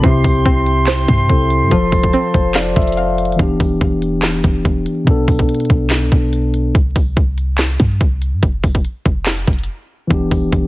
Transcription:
0.00 808-style bass C2, tine electric piano C3 C4, synth pluck C3, brass ensemble E4 C5 G5 C6, kick, closed hi-hat
0.05 tine electric piano E4 G4
0.24 808-style bass C2, kick, open hi-hat
0.45 808-style bass C2, synth pluck C4, kick, closed hi-hat
0.66 closed hi-hat
0.87 synth pluck C5, snare, clap, closed hi-hat
1.08 808-style bass G2, kick, closed hi-hat
1.28 808-style bass C2, tine electric piano C3 C4 E4 A4, kick, closed hi-hat
1.50 closed hi-hat
1.61 808-style bass G2
1.68 808-style bass F1, tine electric piano F3 F4, synth pluck F3, brass ensemble F4 A5, kick, closed hi-hat
1.72 tine electric piano A4 C5
1.92 808-style bass F1, kick, open hi-hat
2.03 kick
2.13 synth pluck C4, closed hi-hat
2.34 808-style bass F1, tine electric piano C5, kick, closed hi-hat
2.55 tine electric piano D5, synth pluck F5, snare, clap, closed hi-hat
2.76 808-style bass F1, tine electric piano E5, kick, closed hi-hat
2.82 closed hi-hat
2.87 closed hi-hat
2.92 closed hi-hat
2.97 tine electric piano F5, closed hi-hat
3.18 closed hi-hat
3.25 closed hi-hat
3.32 tine electric piano E3, closed hi-hat
3.38 808-style bass E1, tine electric piano B3 D4, kick, closed hi-hat
3.42 tine electric piano G4
3.60 808-style bass E1, kick, open hi-hat
3.81 808-style bass E1, kick, closed hi-hat
4.02 closed hi-hat
4.22 snare, clap, closed hi-hat
4.44 808-style bass E1, kick, closed hi-hat
4.65 808-style bass E1, kick, closed hi-hat
4.86 closed hi-hat
5.04 808-style bass B1, tine electric piano B2 B3, kick, closed hi-hat
5.08 tine electric piano D4 A4
5.28 808-style bass B1, kick, open hi-hat
5.39 kick
5.49 closed hi-hat
5.55 closed hi-hat
5.60 closed hi-hat
5.65 closed hi-hat
5.70 808-style bass B1, kick, closed hi-hat
5.90 snare, clap, closed hi-hat
6.02 808-style bass C2
6.12 808-style bass B1, kick, closed hi-hat
6.33 closed hi-hat
6.54 closed hi-hat
6.75 808-style bass C2, kick, closed hi-hat
6.96 808-style bass C2, kick, open hi-hat
7.17 808-style bass C2, kick, closed hi-hat
7.38 closed hi-hat
7.58 snare, clap, closed hi-hat
7.80 808-style bass G2, kick, closed hi-hat
8.01 808-style bass C2, kick, closed hi-hat
8.22 closed hi-hat
8.33 808-style bass G2
8.43 808-style bass F1, kick, closed hi-hat
8.64 808-style bass F1, kick, open hi-hat
8.75 kick
8.85 closed hi-hat
9.06 808-style bass F1, kick, closed hi-hat
9.26 snare, clap, closed hi-hat
9.47 808-style bass F1, kick, closed hi-hat
9.53 closed hi-hat
9.59 closed hi-hat
9.64 closed hi-hat
10.07 808-style bass E1, tine electric piano E3 B3, kick, closed hi-hat
10.12 tine electric piano D4 G4
10.31 808-style bass E1, kick, open hi-hat
10.52 808-style bass E1, kick, closed hi-hat

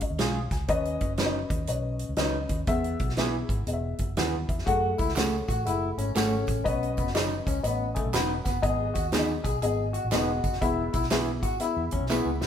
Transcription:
Already playing: grand piano G#4
0.01 grand piano D#5, kick, closed hi-hat
0.11 fingered electric bass D#2
0.19 fingered electric bass B1, clean electric guitar G#3 C#4 F4 G#4, grand piano F5, snare, closed hi-hat
0.51 fingered electric bass C#2, grand piano G#5, kick, snare, closed hi-hat
0.68 fingered electric bass D#2, grand piano C#4 B4 D#5, kick, closed hi-hat
0.85 closed hi-hat
1.01 fingered electric bass F#1, kick, closed hi-hat
1.17 clean electric guitar F#3 C#4 D#4 B4, grand piano C#4 B4 D5, snare, closed hi-hat
1.26 grand piano D#5
1.50 fingered electric bass D#2, kick, closed hi-hat
1.67 fingered electric bass B1, grand piano C#4 B4 D#5, closed hi-hat
1.99 closed hi-hat
2.09 fingered electric bass C#2
2.16 fingered electric bass C#2, clean electric guitar F#3 C#4 D#4 B4, grand piano C#4 B4 D#5, snare, closed hi-hat
2.49 fingered electric bass D#2, kick, closed hi-hat
2.67 fingered electric bass E2, grand piano B3 G#4 E5, kick, closed hi-hat
2.84 closed hi-hat
2.99 fingered electric bass B1, kick, closed hi-hat
3.09 snare
3.17 grand piano B3 G#4 E5, clean electric guitar B3 E4 G#4 B4, snare, closed hi-hat
3.49 fingered electric bass G#1, kick, closed hi-hat
3.67 fingered electric bass E1, grand piano B3 G#4 D#5, closed hi-hat
3.73 grand piano E5
3.98 fingered electric bass F#1, kick, closed hi-hat
4.17 fingered electric bass D#2, clean electric guitar B3 E4 G#4 B4, grand piano F#5, snare, closed hi-hat
4.49 fingered electric bass E2, grand piano E5, kick, closed hi-hat
4.58 snare
4.66 fingered electric bass F#2, grand piano A3 G#4 F#5, clean electric guitar F#4, kick, closed hi-hat
4.98 fingered electric bass C#2, clean electric guitar E4, kick, closed hi-hat, tambourine
5.09 snare
5.15 grand piano A3 G#4 F#5, clean electric guitar A3 C#4 G#4 C#5, snare, clap, closed hi-hat, tambourine
5.48 fingered electric bass A1, clean electric guitar F#4, kick, closed hi-hat, tambourine
5.65 fingered electric bass F#1, grand piano A3 G#4 F#5, clean electric guitar E4, closed hi-hat, tambourine
5.98 fingered electric bass G#1, clean electric guitar C#4, closed hi-hat, tambourine
6.15 fingered electric bass G#1, clean electric guitar A3 C#4 G#4 C#5, grand piano A3 G#4 F#5, snare, clap, closed hi-hat, tambourine
6.47 fingered electric bass A1, kick, closed hi-hat, tambourine
6.64 fingered electric bass B1, clean electric guitar B3, grand piano C#4 B4 D#5, kick, closed hi-hat, tambourine
6.83 closed hi-hat
6.97 fingered electric bass F#1, clean electric guitar B3, kick, closed hi-hat, tambourine
7.07 snare
7.14 clean electric guitar F#3 C#4 D#4 B4, grand piano C#4 B4 D#5, snare, clap, closed hi-hat, tambourine
7.47 fingered electric bass C#2, clean electric guitar C#4, kick, closed hi-hat, tambourine
7.63 fingered electric bass A1, clean electric guitar B3, grand piano C#4 B4 D#5, closed hi-hat, tambourine
7.95 clean electric guitar A3, grand piano G#5 D#6, kick, closed hi-hat
8.05 fingered electric bass B1
8.13 fingered electric bass E1, clean electric guitar F#3 B3 C#4 D#4 B4, grand piano F#5 B5, snare, clap, closed hi-hat, tambourine
8.44 fingered electric bass F#1, clean electric guitar B3, grand piano F#5, kick, snare, closed hi-hat, tambourine
8.62 fingered electric bass G#1, grand piano B3 G#4 D#5, clean electric guitar G#4, kick, closed hi-hat, tambourine
8.94 fingered electric bass D#2, clean electric guitar F#4, kick, closed hi-hat, tambourine
9.12 grand piano B3 G#4 D5, clean electric guitar B3 D#4 G#4 B4, snare, clap, closed hi-hat, tambourine
9.19 grand piano D#5
9.44 fingered electric bass B1, clean electric guitar G#4, kick, closed hi-hat, tambourine
9.62 fingered electric bass G#1, grand piano B3 G#4 D#5, clean electric guitar G#4, closed hi-hat, tambourine
9.93 clean electric guitar F#4, closed hi-hat, tambourine
10.05 fingered electric bass A1
10.11 fingered electric bass E1, grand piano B3 G#4 D#5, clean electric guitar B3 D#4 F#4 G#4 B4, snare, clap, closed hi-hat, tambourine
10.44 fingered electric bass F#1, kick, closed hi-hat, tambourine
10.53 snare
10.61 fingered electric bass E1, grand piano B3 G#4 E5, clean electric guitar E4, kick, closed hi-hat, tambourine
10.93 fingered electric bass B1, clean electric guitar E4, kick, closed hi-hat, tambourine
11.03 snare
11.10 clean electric guitar B3 E4 G#4 B4, grand piano B3 G#4 E5, snare, clap, closed hi-hat, tambourine
11.43 fingered electric bass G#1, clean electric guitar F#4, kick, closed hi-hat, tambourine
11.60 grand piano B3 G#4 E5, clean electric guitar E4, closed hi-hat, tambourine
11.77 fingered electric bass E2
11.91 fingered electric bass E2, clean electric guitar C#4, kick, closed hi-hat
12.01 fingered electric bass B1
12.10 grand piano B3 G#4 E5, clean electric guitar B3 E4 G#4 B4, snare, clap, tambourine
12.25 fingered electric bass C#2
12.41 fingered electric bass E1, clean electric guitar B3, snare, tambourine

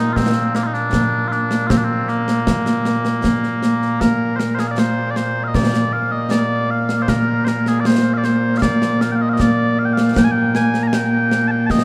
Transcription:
Already playing: bagpipes A#2 A#3 D#4
0.13 bagpipes C4 F4, concert bass drum, snare
0.35 snare
0.55 bagpipes A#3, snare
0.63 bagpipes D#4 F4
0.74 bagpipes D4, snare
0.93 concert bass drum, snare
1.28 bagpipes F4, snare
1.32 bagpipes D4
1.51 snare
1.67 bagpipes C4 F4, concert bass drum, snare
1.77 bagpipes D4
1.84 bagpipes C4
2.08 bagpipes A#3, snare
2.28 snare
2.47 concert bass drum, snare
2.66 snare
2.85 snare
3.05 snare
3.24 concert bass drum, snare
3.43 snare
3.63 snare
3.82 snare
4.01 bagpipes A#4, concert bass drum, snare
4.36 bagpipes A#4 C5, snare
4.55 bagpipes C5, snare
4.59 bagpipes G#4
4.68 bagpipes D5 F5
4.78 bagpipes C5, snare
5.11 bagpipes D5
5.16 bagpipes C5, snare
5.44 bagpipes F5
5.48 bagpipes D#5
5.54 bagpipes D5, concert bass drum, snare
5.74 snare
5.93 bagpipes F5
6.12 bagpipes D#5
6.30 bagpipes D5, snare
6.71 bagpipes F5
6.89 snare
7.02 bagpipes C5
7.08 bagpipes A#4, concert bass drum, snare
7.45 bagpipes A#4 C5, snare
7.66 bagpipes G#4, snare
7.80 bagpipes D5
7.85 bagpipes C5, snare
8.14 bagpipes D5 F5
8.24 bagpipes C5, snare
8.58 bagpipes F5
8.62 bagpipes D5, concert bass drum, snare
8.82 snare
9.01 bagpipes F5, snare
9.12 bagpipes F5 G5
9.22 bagpipes D#5
9.29 bagpipes F5
9.33 bagpipes D#5
9.40 bagpipes D5, concert bass drum, snare
9.79 bagpipes F5
9.85 bagpipes G5
9.93 bagpipes F5, snare
10.16 bagpipes G5, concert bass drum, snare
10.24 bagpipes G#5
10.31 bagpipes G5
10.55 bagpipes G#5, snare
10.74 snare
10.83 bagpipes A#5
10.88 bagpipes G#5
10.93 bagpipes G5, snare
11.31 snare
11.48 bagpipes G5 A5
11.66 bagpipes A5, concert bass drum, snare
11.71 bagpipes D#5

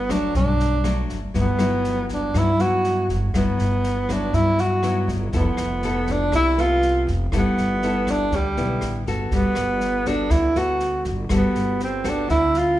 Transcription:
Already playing: upright bass G1, nylon-string guitar G2, tenor saxophone B3
0.09 nylon-string guitar F#3 A3 D4, tenor saxophone D4, kick, cross-stick, snare
0.34 upright bass B1, nylon-string guitar G2, tenor saxophone D4, kick, snare
0.60 snare
0.84 nylon-string guitar F#3 A3 D4, cross-stick, snare
1.09 upright bass G1, kick, snare
1.34 upright bass G1, nylon-string guitar G2 F#3 B3 E4, kick, snare
1.40 tenor saxophone B3
1.59 upright bass G1, nylon-string guitar F#3 B3 E4, cross-stick, snare
1.84 snare
2.09 kick, snare
2.14 tenor saxophone D4
2.34 upright bass G2, nylon-string guitar G2 F#3 B3 E4, tenor saxophone E4, kick, cross-stick, snare
2.59 nylon-string guitar F#3 B3 E4, tenor saxophone F#4, snare
2.84 snare
3.09 upright bass G1, kick, snare
3.34 upright bass G1, nylon-string guitar G2 F#3 B3 E4, tenor saxophone B3, kick, cross-stick, snare
3.59 upright bass G1, snare
3.84 snare
4.08 nylon-string guitar F#3 B3 E4, tenor saxophone D4, kick, cross-stick, snare
4.33 nylon-string guitar G2, upright bass G2, tenor saxophone E4, kick, snare
4.58 tenor saxophone F#4, snare
4.83 nylon-string guitar F#3 B3 E4, cross-stick, snare
5.08 upright bass G1, kick, snare
5.32 upright bass F1, nylon-string guitar F3 B3 E4 A4, tenor saxophone B3, kick, snare
5.57 upright bass F1, cross-stick, snare
5.82 nylon-string guitar B3 E4 A4, snare
6.07 kick, snare
6.11 tenor saxophone D4
6.32 upright bass C2, nylon-string guitar C3, tenor saxophone E4, kick, cross-stick, snare
6.58 nylon-string guitar B3 A4, tenor saxophone F4, snare
6.82 snare
7.07 upright bass F1, kick, snare
7.32 upright bass G1, nylon-string guitar G3 B3 E4 A4, kick, cross-stick, snare
7.38 tenor saxophone B3
7.58 upright bass G1, snare
7.82 nylon-string guitar B3 E4 A4, snare
8.07 tenor saxophone D4, kick, cross-stick, snare
8.32 upright bass D2, nylon-string guitar D3, tenor saxophone G3, kick, snare
8.57 upright bass B1, nylon-string guitar B3 E4 A4, snare
8.81 upright bass A1, cross-stick, snare
9.07 upright bass G1, nylon-string guitar B3 F#4 A4, kick, snare
9.31 upright bass G1, nylon-string guitar G3, tenor saxophone B3, kick, snare
9.55 upright bass G1, cross-stick, snare
9.80 snare
10.05 nylon-string guitar B3 F#4 A4, tenor saxophone D4, kick, snare
10.30 upright bass D2, nylon-string guitar D3, tenor saxophone E4, kick, cross-stick, snare
10.55 nylon-string guitar B3 F#4 A4, tenor saxophone F#4, snare
10.80 snare
11.04 upright bass G1, kick, snare
11.29 upright bass G1, nylon-string guitar G3 B3 F#4 A4, kick, cross-stick, snare
11.36 tenor saxophone B3
11.55 upright bass G1, snare
11.80 snare
11.84 tenor saxophone C4
12.04 nylon-string guitar B3 F#4 A4, kick, cross-stick, snare
12.09 tenor saxophone D4
12.28 upright bass D2, nylon-string guitar D3, tenor saxophone E4, kick, snare
12.54 tenor saxophone F4, snare

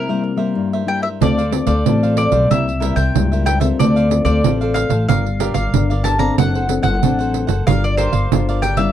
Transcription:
Already playing: nylon-string guitar C3, mandolin A#4
0.08 nylon-string guitar G3 A#3 E4, cavaquinho A#4 C5 E5
0.23 muted cavaquinho stroke
0.36 nylon-string guitar G3 A#3 E4, cavaquinho A#4 C5 E5
0.55 nylon-string guitar G2
0.73 cavaquinho A#4 C5 E5
0.86 nylon-string guitar G3 A#3 E4, cavaquinho E4 A#4 C5 E5, mandolin G5
1.02 cavaquinho A#4 C5 E5, mandolin E5
1.20 upright bass D2, nylon-string guitar D3 A3 C4 F4, cavaquinho D4 A4 C5 F5, mandolin D5, pandeiro
1.38 cavaquinho A4 C5 F5, pandeiro
1.51 nylon-string guitar A3 C4 F4, muted cavaquinho stroke, pandeiro
1.67 upright bass D2, cavaquinho A4 C5 F5, mandolin D5, pandeiro
1.85 upright bass A1, nylon-string guitar A2 A3 C4 F4, cavaquinho D4 A4 C5 F5, pandeiro
2.03 cavaquinho A4 C5 F5, pandeiro
2.17 mandolin D5, pandeiro
2.32 upright bass B1, cavaquinho A4 C5 F5, pandeiro
2.50 upright bass C2, nylon-string guitar C3 G3 A#3 E4, cavaquinho E4 A#4 C5 E5, mandolin E5, pandeiro
2.67 muted cavaquinho stroke, pandeiro
2.80 nylon-string guitar G3 A#3 E4, cavaquinho E4 A#4 C5 E5, pandeiro
2.96 upright bass C2, cavaquinho A#4 C5 E5, mandolin G5, pandeiro
3.15 upright bass C#2, nylon-string guitar G2 G3 A#3 E4, pandeiro
3.32 cavaquinho A#4 C5 E5, pandeiro
3.45 cavaquinho E4 A#4 C5 E5, mandolin G5, pandeiro
3.60 nylon-string guitar C4 F4 A4, cavaquinho A#4 C5 E5, mandolin E5, pandeiro
3.79 upright bass D2, nylon-string guitar D3, cavaquinho D4 A4 C5 F5, mandolin D5, pandeiro
3.96 cavaquinho A4 C5 F5, pandeiro
4.10 nylon-string guitar C4 F4 A4, muted cavaquinho stroke, pandeiro
4.25 upright bass D2, cavaquinho A4 C5 F5, mandolin D5, pandeiro
4.44 upright bass A1, nylon-string guitar A2 C4 F4 A4, cavaquinho D4 A4 C5 F5, pandeiro
4.61 cavaquinho A4 C5 F5, pandeiro
4.74 mandolin F5, pandeiro
4.89 upright bass A1, cavaquinho A4 C5 F5, pandeiro
5.08 upright bass G1, nylon-string guitar G3 D4 F4 A#4, cavaquinho G4 A#4 D5 F5, mandolin F5, pandeiro
5.26 muted cavaquinho stroke, pandeiro
5.39 nylon-string guitar D4 F4 A#4, cavaquinho G4 A#4 D5 F5, pandeiro
5.54 upright bass G1, cavaquinho A#4 D5 F5, mandolin F5, pandeiro
5.73 upright bass G1, nylon-string guitar D3 D4 F4 A#4, pandeiro
5.90 cavaquinho A#4 D5 F5, pandeiro
6.04 nylon-string guitar D4 F4 A#4, cavaquinho G4 A#4 D5 F5, mandolin A5, pandeiro
6.18 nylon-string guitar C4 D4 A4, cavaquinho A#4 D5 F5, mandolin A#5, pandeiro
6.38 upright bass F#1, nylon-string guitar F#3, cavaquinho D4 A4 C5 F#5, mandolin F#5, pandeiro
6.54 cavaquinho A4 C5 F#5, pandeiro
6.68 nylon-string guitar C4 D4 A4, muted cavaquinho stroke, pandeiro
6.83 upright bass F#1, cavaquinho A4 C5 F#5, mandolin F#5, pandeiro
7.02 upright bass A1, nylon-string guitar F#3 C4 D4 A4, cavaquinho D4 A4 C5 F#5, pandeiro
7.19 cavaquinho A4 C5 F#5, pandeiro
7.34 pandeiro
7.47 upright bass F#1, cavaquinho A4 C5 F#5, pandeiro
7.67 upright bass G1, nylon-string guitar G3 D4 F4 A#4, cavaquinho G4 A#4 D5 F5, mandolin F5, pandeiro
7.84 mandolin D5, muted cavaquinho stroke, pandeiro
7.97 cavaquinho G4 A#4 D5 F5, mandolin C5, pandeiro
8.12 upright bass G1, cavaquinho A#4 D5 F5, pandeiro
8.32 upright bass G1, nylon-string guitar D3 D4 F4 A#4, pandeiro
8.49 cavaquinho A#4 D5 F5, pandeiro
8.62 cavaquinho G4 A#4 D5 F5, mandolin G5, pandeiro
8.77 nylon-string guitar G3 C#4 E4, cavaquinho A#4 D5 F5, mandolin E5, pandeiro

